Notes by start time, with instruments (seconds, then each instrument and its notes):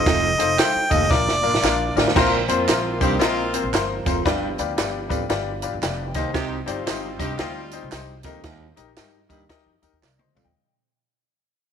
Already playing: grand piano D#4 F4 A4 C5, harmonica D#5
0.06 upright bass F1, baritone saxophone F2, kick, snare, closed hi-hat, tambourine
0.38 upright bass F1, grand piano D#4 F4 A4 C5, closed hi-hat, tambourine
0.58 grand piano D#4 F4 A4 C5, harmonica G5, snare, clap, closed hi-hat, tambourine
0.75 muted upright bass stroke
0.90 upright bass F1, baritone saxophone D#2, grand piano D#4 F4 A4 D#5, harmonica D#5, kick, closed hi-hat, tambourine
1.10 upright bass A#1, grand piano A#2 D4 F4 A#4 D5, harmonica D5, kick, snare, tambourine
1.27 upright bass F1, snare
1.42 upright bass A1, horn section A#3 D4 F4, grand piano D4 F4 A#4 D5, tambourine
1.54 upright bass A#1, snare
1.62 upright bass A#1, horn section A#3 D4 F4, grand piano D4 F4 A#4 F5, snare, clap, tambourine
1.95 upright bass A1, baritone saxophone D2, grand piano D4 F4 A#4 D5, snare, tambourine
2.08 snare
2.14 upright bass A#1, baritone saxophone A#2, grand piano A#2 C4 F4 A#4 C5, tonewheel organ F3 A#3 C4 A#4, horn section C4 F4 A#4, kick, snare, crash, tambourine
2.48 upright bass F2, horn section A#3 C4 F4, grand piano C4 F4 A#4 C5, closed hi-hat, tambourine
2.68 upright bass A#1, grand piano C4 F4 A#4 C5, snare, clap, closed hi-hat, tambourine
3.00 upright bass C2, baritone saxophone G2, grand piano C4 F4 A#4 C5, horn section C4 D#4 G4, kick, closed hi-hat, tambourine
3.19 upright bass A#1, horn section A#3 C4 F4, grand piano C4 F4 A#4 D#5, snare, closed hi-hat
3.53 grand piano C4 F4 A#4 C5, closed hi-hat, tambourine
3.63 upright bass A#1
3.73 upright bass G1, grand piano C4 F4 A#4 C5, snare, clap, closed hi-hat, tambourine
4.05 upright bass F1, baritone saxophone F2, grand piano C4 F4 A#4 C5, kick, snare, closed hi-hat, tambourine
4.25 upright bass G1, grand piano G2 F4 G4 B4 D5, baritone saxophone G2, tonewheel organ B3 D4 G4, kick, snare, closed hi-hat, tambourine
4.58 upright bass D2, grand piano F4 G4 B4 D5, closed hi-hat, tambourine
4.77 upright bass G1, grand piano F4 G4 B4 D5, snare, clap, closed hi-hat, tambourine
5.09 upright bass A1, baritone saxophone F2, grand piano F4 G4 B4 D5, kick, closed hi-hat, tambourine
5.29 upright bass G1, grand piano F4 G4 B4 D5, snare, closed hi-hat, tambourine
5.62 grand piano F4 G4 B4 D5 B5, closed hi-hat, tambourine
5.73 upright bass G1
5.82 upright bass F1, grand piano F4 G4 B4 D5 G5, snare, clap, closed hi-hat, tambourine
6.14 upright bass C2, baritone saxophone D#2, grand piano C3 D#4 G4 C5 D#5, tonewheel organ D#3 G3 C4, kick, snare, closed hi-hat, tambourine
6.33 baritone saxophone C3, horn section C4 D#4 G4, kick, snare, closed hi-hat, tambourine
6.65 upright bass G1, horn section G3 C4 F4, grand piano D#4 G4 C5 D5, closed hi-hat, tambourine
6.86 upright bass G1, grand piano D#4 G4 C5 D#5, snare, clap, closed hi-hat, tambourine
7.19 baritone saxophone G2, upright bass C3, horn section C4 D#4 G4, grand piano D#4 G4 C5 D#5, kick, closed hi-hat, tambourine
7.37 upright bass D2, horn section G3 C4 F4, grand piano D#4 G4 C5 D#5, snare, closed hi-hat, tambourine
7.71 grand piano D#4 G4 C5 D#5, closed hi-hat, tambourine
7.82 upright bass C2
7.92 upright bass C2, grand piano D#4 G4 C5 D#5, snare, clap, closed hi-hat, tambourine
8.23 upright bass D#2, baritone saxophone F2, grand piano D#3 D#4 G4 A#4 D#5, kick, snare, closed hi-hat, tambourine
8.43 baritone saxophone D#2, kick, snare, closed hi-hat, tambourine
8.76 upright bass A#1, grand piano D#4 G4 A#4 D#5, closed hi-hat, tambourine
8.96 upright bass G2, grand piano D#4 G4 A#4 D#5, snare, clap, closed hi-hat, tambourine
9.29 upright bass D#2, baritone saxophone G2, grand piano D#4 G4 A#4 D#5, kick, closed hi-hat, tambourine
9.49 grand piano D#4 G4 A#4 D#5, kick, snare, closed hi-hat
9.66 upright bass F2
9.82 upright bass D#2, grand piano D#4 G4 A#4 D#5, closed hi-hat, tambourine
9.92 upright bass D#2
10.02 upright bass C2, grand piano A#4 D5, snare, clap, tambourine
10.18 grand piano C5 D#5, mid tom
10.35 upright bass D2, baritone saxophone F2, grand piano D5 F5, floor tom, tambourine
10.44 upright bass D#2, grand piano D#5 G5